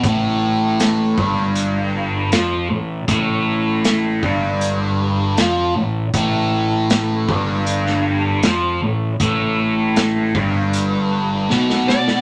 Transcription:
<<
  \new Staff \with { instrumentName = "Lead electric guitar" } { \time 4/4 \key g \major \tempo 4 = 78 r1 | r1 | r1 | r2. r8 d''8 | }
  \new Staff \with { instrumentName = "Distorted electric guitar" } { \clef bass \time 4/4 \key g \major a,4. g,4. f8 a,8 | a,4. g,4. f8 a,8 | a,4. g,4. f8 a,8 | a,4. g,4. b,4 | }
  \new Staff \with { instrumentName = "Fingered electric bass" } { \clef bass \time 4/4 \key g \major a,,4. g,,4. f,8 a,,8 | a,,4. g,,4. f,8 a,,8 | a,,4. g,,4. f,8 a,,8 | a,,4. g,,4. b,,4 | }
  \new DrumStaff \with { instrumentName = "Drums" } \drummode { \time 4/4 <hh bd>4 <hh sn>8 bd8 hh4 <hh sn>4 | <hh bd>4 <hh sn>8 bd8 hh4 <hh sn>4 | <hh bd>4 <hh sn>8 bd8 hh16 sn8. <hh sn>4 | <hh bd>4 <hh sn>8 bd8 hh4 sn16 sn16 sn16 sn16 | }
>>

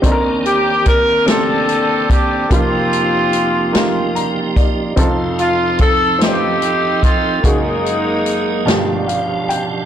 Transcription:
<<
  \new Staff \with { instrumentName = "Horn section" } { \time 6/8 \key f \mixolydian \tempo 4. = 49 << { r8 g'8 bes'8 a'4 g'8 | f'2 r4 | r8 f'8 a'8 g'4 f'8 | ees'2 r4 | } \\ { r4. <c' d'>4. | <bes c'>2 r4 | r4. <c' ees'>4. | <aes bes>2 r4 | } >> }
  \new Staff \with { instrumentName = "Tonewheel organ" } { \time 6/8 \key f \mixolydian << { r2. | r2 g''8 ees''8 | r2. | r2. | } \\ { <ees bes c' d''>2. | <f bes ees' f' g'>2. | <f c' ees' g' a'>2. | <ges bes ees' aes'>4. <b, f g' d''>4. | } >> }
  \new Staff \with { instrumentName = "Upright piano" } { \time 6/8 \key f \mixolydian << { r2. | r2 bes''8 d''8 | r2. | r2 f''8 g''8 | } \\ { <c' d' ees' a' bes'>4. <c' d' g' c''>4. | <bes ees' f' g'>4. <bes ees' f' g'>4. | <c' ees' f' a'>4. <c' ees' f' ces'' c''>4. | <bes ees' ges' aes'>4. <b, f' g' d''>4. | } >> }
  \new Staff \with { instrumentName = "Upright piano" } { \clef bass \time 6/8 \key f \mixolydian <ees, ees>2. | <f,, f,>2. | <f,, f,>2. | <ges,, ges,>4. <g,, g,>4. | }
  \new DrumStaff \with { instrumentName = "Drums" } \drummode { \time 6/8 <hh bd>8 hh8 <hh bd>8 <hh sn>8 hh8 <hh bd>8 | <hh bd>8 hh8 hh8 <hh sn>8 hh8 <hh bd>8 | <hh bd>8 hh8 <hh bd>8 <hh sn>8 hh8 <hh bd>8 | <hh bd>8 hh8 hh8 <hh sn>8 hh8 hh8 | }
>>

